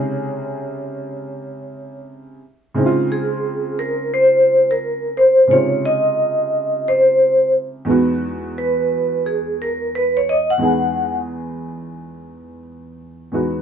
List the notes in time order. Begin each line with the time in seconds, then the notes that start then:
Already playing: C3 C#3 G#3 D#4 G#4 C#5
2.74 C#3 G#3 C4 D#4
2.79 E4
2.86 F4
3.12 G#4
3.79 A#4
4.14 C5
4.71 A#4
5.17 C5
5.47 C3 C#3 G#3 D#4 C#5
5.53 F4
5.86 D#5
6.88 C5
7.85 E2 G#3 B3 D#4
7.90 F#4
8.58 B4
9.26 G#4
9.62 A#4
9.95 B4
10.17 C#5
10.29 D#5
10.50 F#5
10.58 E2 G#3 B3 D#4
10.63 G#4
13.32 E2 G#3 B3 D#4 F#4